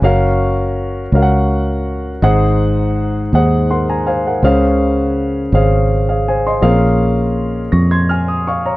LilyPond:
<<
  \new Staff \with { instrumentName = "Grand piano" } { \time 6/8 \key des \major \tempo 4. = 55 << { r2. | r2 <bes' ges'' c'''>16 <aes'' bes''>16 <c'' f'' aes''>16 <bes' ges''>16~ | <bes' ges''>16 r2 <aes' f''>16 <c'' aes''>16 <ees'' c'''>16~ | <ees'' c'''>16 r4 r16 <des''' bes'''>16 <c''' aes'''>16 <aes'' f'''>16 ees'''16 <f'' des'''>16 <des'' bes''>16 | } \\ { <des' ges' bes' f''>4. <des' ges' bes' f'' ges''>4. | <aes, ees' aes' c'' ges''>4. <ees' aes' c'' ges''>4. | <des des' aes' c'' f''>4. <des' aes' c'' f''>4. | <bes, c' des' aes' bes' f''>4. r4. | } >> }
  \new Staff \with { instrumentName = "Fingered electric bass" } { \clef bass \time 6/8 \key des \major ges,,4. des,4. | aes,,4. ees,4. | des,4. aes,,4. | bes,,4. f,4. | }
>>